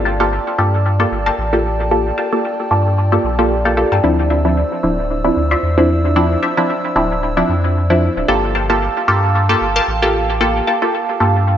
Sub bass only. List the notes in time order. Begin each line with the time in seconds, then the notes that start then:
Already playing: G1
0.58 G2
1.12 G1
1.38 A1
2.71 G2
3.24 A#1
3.92 G2
4.04 D2
4.83 D1
5.36 D2
5.63 E2
6.96 D1
7.49 F2
8.17 D1
8.28 G1
9.08 G2
9.61 G1
9.88 A1
11.20 G2